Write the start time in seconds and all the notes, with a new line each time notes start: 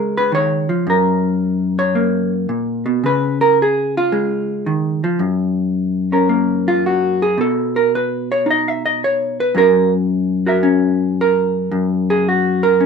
Already playing: C#3 G#3 A#4
0.17 B4
0.32 D#3 C#5
0.69 F3
0.87 F#2 A#4
1.79 C#5
1.95 A#3
2.49 A#2
2.86 B2
3.04 C#3 B4
3.41 A#4
3.62 G#4
3.97 F4
4.12 G#3
4.66 D#3
5.04 F3
5.19 F#2
6.12 C#4 A#4
6.29 A#3
6.68 F4
6.86 F#4
7.22 G#4
7.38 B2 A4
7.76 A#4
7.95 B4
8.32 C#5
8.46 D#4
8.50 D#5
8.68 E5
8.86 D#5
9.04 C#5
9.40 B4
9.55 F#2 C#4 F#4 A#4
10.46 F#4 A#4 E5
10.63 C#4
11.21 A#4
11.71 F#2
12.10 G#4
12.29 F#4
12.63 A#4
12.80 C#4